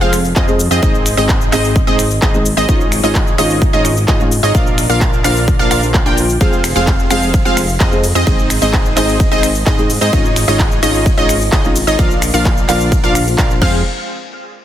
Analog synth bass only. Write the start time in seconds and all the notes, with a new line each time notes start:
0.01 F1
0.36 F2
0.71 F2
0.83 G#1
1.18 G#1
1.52 G#1
1.87 G#1
2.22 G#1
2.57 G#1
2.69 G#1
3.04 G#1
3.39 G#1
3.73 G#1
4.08 G#1
4.43 G#1
4.55 A#1
4.90 A#1
5.25 A#1
5.59 A#1
5.71 A#1
6.06 A#1
6.41 F1
6.76 F1
7.11 F1
7.45 F1
7.80 F2
8.15 F2
8.27 G#1
8.62 G#1
8.97 G#1
9.32 G#1
9.66 G#2
10.01 G#2
10.13 G#1
10.48 G#1
10.83 G#1
11.18 G#1
11.52 G#1
11.87 G#1
11.99 A#1
12.34 A#1
12.69 A#1
13.03 A#1
13.38 A#1
13.62 F1